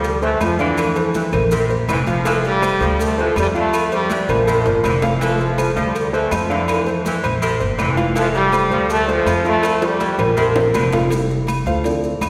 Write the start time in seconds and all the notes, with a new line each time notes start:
Already playing: D2 G3 A3 A4 C5
0.04 cowbell, high conga, maracas
0.21 E3 A3 A4 C5, high conga, maracas
0.40 F2 F3, cowbell, high conga, low timbale, low agogo, claves, maracas
0.58 D3 E3 D4 F5, cowbell, high conga, maracas
0.78 cowbell, high conga, low agogo, claves, maracas
0.96 A3 A4 C5, low agogo, maracas
1.14 E3, cowbell, high conga, low timbale, maracas
1.32 A#1 A#3 A#4 C5, cowbell, high conga, low conga, low agogo, claves, maracas
1.51 C3, cowbell, high conga, low conga, low agogo, maracas
1.69 A#3 A#4 C5, high conga, maracas
1.88 F1 D3 E3, cowbell, high conga, low timbale, low agogo, claves, maracas
2.06 F3 F4 F5, cowbell, high conga, low agogo, maracas
2.25 E3 A3 A4 F5, cowbell, high conga, low agogo, maracas
2.44 G3, high conga, maracas
2.62 A3 A4 C5, cowbell, high conga, low timbale, low agogo, claves, maracas
2.80 D2 F3 A3 A4 C5, high conga, low agogo, maracas
2.99 A3, cowbell, high conga, maracas
3.17 E3 F3 A3 A4 C5, high conga, maracas
3.36 F2 G3, cowbell, high conga, low timbale, low agogo, claves, maracas
3.54 D3 F3 A3 F4 F5, cowbell, high conga, maracas
3.73 cowbell, high conga, low agogo, claves, maracas
3.92 G3 A3 A4 C5, high conga, low agogo, maracas
4.10 E3, cowbell, high conga, low timbale, maracas
4.29 A#1 F3 A#3 A#4 C5, cowbell, high conga, low conga, low agogo, claves, maracas
4.47 C3, cowbell, high conga, low conga, low agogo, maracas
4.65 G1 A#3 A#4 C5, high conga, high timbale, maracas
4.84 F1 D3 E3, cowbell, high conga, low timbale, low agogo, claves, maracas
5.02 F3 F4 F5, cowbell, high conga, low timbale, low agogo, maracas
5.20 E3 A3 A4 F5, cowbell, high conga, low agogo, maracas
5.24 F3
5.39 high conga, maracas
5.58 A3 A4 C5, cowbell, high conga, low timbale, low agogo, claves, maracas
5.71 A3
5.76 D2 F3 G3 A3 A4 C5, high conga, low agogo, maracas
5.95 cowbell, high conga, maracas
6.13 E3 A3 A4 C5, high conga, maracas
6.31 F2 F3, cowbell, high conga, low timbale, low agogo, claves, maracas
6.50 D3 E3 D4 F5, cowbell, high conga, maracas
6.68 cowbell, high conga, low agogo, claves, maracas
6.86 A3 A4 C5, high conga, low agogo, maracas
7.05 E3, cowbell, high conga, low timbale, maracas
7.23 A#1 A#3 A#4 C5, cowbell, high conga, low conga, low agogo, claves, maracas
7.42 C3, cowbell, high conga, low agogo, maracas
7.60 G1 A#3 A#4 C5, high conga, maracas
7.78 F1 D3 E3, cowbell, high conga, low timbale, low agogo, claves, maracas
7.96 F3 F4 F5, cowbell, high conga, low agogo, maracas
8.15 E3 F3 A3 A4 F5, cowbell, high conga, low agogo, maracas
8.35 G3, maracas
8.52 A3 A4 C5, cowbell, high conga, low timbale, low agogo, claves, maracas
8.70 D2 F3 A3 A4 C5, high conga, low agogo, maracas
8.90 A3, cowbell, high conga, maracas
9.08 E3 F3 A3 A4 C5, high conga, maracas
9.26 F2, cowbell, high conga, low timbale, low agogo, claves, maracas
9.44 D3 F3 A3 F4 F5, cowbell, high conga, maracas
9.63 cowbell, high conga, high timbale, low agogo, claves, maracas
9.81 G3 A3 A4 C5, high conga, high timbale, low agogo, maracas
9.99 E3, cowbell, high conga, high timbale, maracas
10.18 A#1 F3 A#3 A#4 C5, cowbell, high conga, low conga, low agogo, claves, maracas
10.36 C3, cowbell, high conga, low conga, low agogo, maracas
10.56 A#3 A#4 C5, high bongo, high conga, low timbale, maracas
10.74 F1 D3, cowbell, low bongo, high conga, low agogo, claves, maracas
10.93 F3 F4 F5, cowbell, low bongo, high conga, low timbale, low agogo, maracas
11.10 G3 A3 E4, cowbell, high conga, low agogo, maracas
11.30 high conga, maracas
11.47 cowbell, high conga, low timbale, low agogo, claves, maracas
11.66 D2 F4 A4 C5 F5, high conga, low agogo, maracas
11.84 F3 C4 D4 E4 F4 A4 D5, cowbell, high conga, maracas
12.03 high conga, maracas
12.21 F2, cowbell, high conga, low timbale, low agogo, claves, maracas